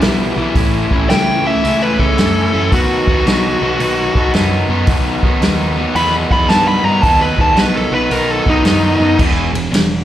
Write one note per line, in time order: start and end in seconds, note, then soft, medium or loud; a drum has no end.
0.01 0.31 B1 medium
0.01 0.36 E3 medium
0.01 0.37 G3 medium
0.01 0.37 B3 loud
0.01 0.38 E4 medium
0.01 snare loud
0.01 open hi-hat soft
0.36 0.52 B1 medium
0.36 0.54 E3 medium
0.36 0.55 G3 medium
0.36 0.55 B3 medium
0.36 0.55 E4 medium
0.55 0.84 A1 medium
0.55 0.90 A2 medium
0.55 0.91 E3 medium
0.55 0.91 A3 medium
0.55 0.91 C#4 medium
0.55 0.91 E4 loud
0.55 kick loud
0.55 open hi-hat medium
0.91 1.06 A1 medium
0.91 1.09 A2 medium
0.91 1.08 E3 medium
0.91 1.09 A3 medium
0.91 1.10 C#4 medium
0.91 1.10 E4 medium
0.91 kick medium
1.09 1.53 C#2 medium
1.09 1.44 A2 medium
1.09 1.44 E3 medium
1.09 1.45 A3 medium
1.09 1.45 C#4 medium
1.09 1.45 E4 medium
1.09 1.45 G5 medium
1.09 snare loud
1.09 open hi-hat soft
1.45 1.62 A2 medium
1.45 1.62 E3 medium
1.45 1.62 A3 medium
1.45 1.63 C#4 medium
1.45 1.63 E4 medium
1.45 1.81 E5 medium
1.63 1.93 C#2 medium
1.63 1.96 A2 loud
1.63 1.97 E3 loud
1.63 1.98 A3 medium
1.63 1.98 C#4 loud
1.63 1.98 E4 loud
1.63 open hi-hat soft
1.83 2.00 B4 medium
1.98 2.14 C#2 medium
1.98 2.17 A2 medium
1.98 2.17 E3 medium
1.98 2.18 A3 medium
1.98 2.18 C#4 medium
1.98 2.19 E4 medium
1.98 2.70 A4 medium
1.98 kick medium
2.18 2.47 F#2 medium
2.18 2.51 A2 medium
2.18 2.52 E3 medium
2.18 2.53 A3 medium
2.18 2.52 C#4 medium
2.18 2.53 E4 medium
2.18 snare loud
2.18 open hi-hat soft
2.52 2.69 F#2 medium
2.52 2.70 A2 medium
2.52 2.71 E3 medium
2.52 2.71 A3 medium
2.52 2.71 C#4 medium
2.52 2.71 E4 medium
2.72 3.00 B1 medium
2.72 3.07 B2 medium
2.72 3.07 D#3 medium
2.72 3.09 F#3 medium
2.72 3.08 B3 medium
2.72 3.09 D#4 medium
2.72 4.31 F#4 medium
2.72 kick loud
2.72 open hi-hat soft
3.07 3.22 D#2 medium
3.07 3.25 B2 medium
3.07 3.25 D#3 medium
3.07 3.26 F#3 medium
3.07 3.26 B3 medium
3.07 3.27 D#4 medium
3.07 kick medium
3.26 3.54 B1 medium
3.26 3.61 B2 medium
3.26 3.60 D#3 loud
3.26 3.62 F#3 loud
3.26 3.62 B3 loud
3.26 3.62 D#4 loud
3.26 snare medium
3.26 open hi-hat soft
3.61 3.77 B1 medium
3.61 3.78 B2 medium
3.61 3.78 D#3 medium
3.61 3.79 F#3 medium
3.61 3.80 B3 medium
3.61 3.80 D#4 medium
3.79 4.08 B1 medium
3.79 4.14 B2 medium
3.79 4.14 D#3 loud
3.79 4.16 F#3 loud
3.79 4.16 B3 medium
3.79 4.16 D#4 loud
3.79 open hi-hat soft
4.15 4.30 B1 medium
4.15 4.34 B2 medium
4.15 4.33 D#3 medium
4.15 4.34 F#3 medium
4.15 4.35 B3 medium
4.15 4.35 D#4 medium
4.15 kick medium
4.33 4.63 F#2 medium
4.33 4.68 B2 medium
4.33 4.68 D#3 medium
4.33 4.69 F#3 medium
4.33 4.69 B3 medium
4.33 4.70 D#4 medium
4.33 snare loud
4.33 open hi-hat soft
4.69 4.84 F#2 medium
4.69 4.87 B2 medium
4.69 4.87 D#3 medium
4.69 4.89 F#3 medium
4.69 4.89 B3 medium
4.69 4.89 D#4 medium
4.87 5.16 B1 medium
4.87 5.23 B2 medium
4.87 5.23 D#3 medium
4.87 5.24 F#3 loud
4.87 5.24 B3 medium
4.87 5.25 D#4 medium
4.87 kick loud
4.87 open hi-hat medium
5.23 5.38 B1 medium
5.23 5.42 B2 medium
5.23 5.42 D#3 medium
5.23 5.43 F#3 medium
5.23 5.43 B3 medium
5.23 5.43 D#4 medium
5.23 kick medium
5.42 5.85 D#2 medium
5.42 5.77 B2 medium
5.42 5.77 D#3 medium
5.42 5.78 F#3 loud
5.42 5.77 B3 loud
5.42 5.78 D#4 loud
5.42 snare loud
5.42 open hi-hat soft
5.77 5.95 B2 medium
5.77 5.95 D#3 medium
5.77 5.95 F#3 medium
5.77 5.96 B3 medium
5.77 5.96 D#4 medium
5.95 6.24 E2 medium
5.95 6.31 B2 loud
5.95 6.32 D#3 medium
5.95 6.31 F#3 loud
5.95 6.33 B3 medium
5.95 6.32 D#4 loud
5.95 6.14 B5 medium
5.95 open hi-hat soft
6.30 6.46 E2 medium
6.30 6.48 B2 medium
6.30 6.49 D#3 medium
6.30 6.49 F#3 medium
6.30 6.50 B3 medium
6.30 6.50 D#4 medium
6.30 6.49 B5 loud
6.30 kick medium
6.49 6.78 G2 medium
6.49 6.85 B2 medium
6.49 6.85 D#3 medium
6.49 6.85 F#3 loud
6.49 6.86 B3 medium
6.49 6.86 D#4 medium
6.49 6.67 A5 medium
6.49 snare loud
6.49 open hi-hat soft
6.68 6.84 B5 medium
6.83 6.99 G2 medium
6.83 7.02 B2 medium
6.83 7.03 D#3 medium
6.83 7.03 F#3 medium
6.83 7.04 B3 medium
6.83 7.04 D#4 medium
6.83 7.02 A#5 medium
7.02 7.32 D#2 medium
7.02 7.38 B2 medium
7.02 7.38 D#3 medium
7.02 7.38 F#3 medium
7.02 7.39 B3 loud
7.02 7.39 D#4 loud
7.02 7.20 A5 loud
7.02 kick loud
7.02 open hi-hat soft
7.21 7.39 B4 medium
7.38 7.54 D#2 medium
7.38 7.55 B2 medium
7.38 7.56 D#3 medium
7.38 7.56 F#3 medium
7.38 7.57 B3 medium
7.38 7.57 D#4 medium
7.38 7.58 A5 medium
7.38 kick medium
7.55 7.85 B1 medium
7.55 7.90 B2 medium
7.55 7.91 D#3 loud
7.55 7.91 F#3 loud
7.55 7.92 B3 loud
7.55 7.92 D#4 loud
7.55 7.76 B4 medium
7.55 snare loud
7.55 open hi-hat soft
7.76 7.94 A4 medium
7.91 8.07 B1 medium
7.91 8.10 B2 medium
7.91 8.10 D#3 medium
7.91 8.10 F#3 medium
7.91 8.11 B3 medium
7.91 8.11 D#4 medium
7.91 8.12 B4 medium
8.10 8.39 B1 medium
8.10 8.45 B2 medium
8.10 8.46 D#3 medium
8.10 8.46 F#3 medium
8.10 8.46 B3 medium
8.10 8.47 D#4 loud
8.10 8.31 A#4 medium
8.10 open hi-hat soft
8.31 8.48 A4 medium
8.46 8.62 B1 medium
8.46 8.63 B2 medium
8.46 8.64 D#3 medium
8.46 8.63 F#3 medium
8.46 8.64 B3 medium
8.46 8.64 D#4 medium
8.46 9.19 D#4 medium
8.46 kick medium
8.64 8.94 F#2 medium
8.64 8.98 B2 medium
8.64 8.98 D#3 medium
8.64 8.99 F#3 medium
8.64 8.99 B3 medium
8.64 9.00 D#4 medium
8.64 snare medium
8.64 open hi-hat soft
8.99 9.16 F#2 medium
8.99 9.18 B2 medium
8.99 9.18 D#3 medium
8.99 9.18 F#3 medium
8.99 9.19 B3 medium
8.99 9.19 D#4 medium
9.19 9.52 E1 medium
9.19 9.52 E2 loud
9.19 kick loud
9.19 crash loud
9.53 9.71 E1 medium
9.53 9.69 E2 medium
9.53 ride medium
9.71 10.04 E1 medium
9.71 10.01 E2 medium
9.71 snare medium
9.71 ride medium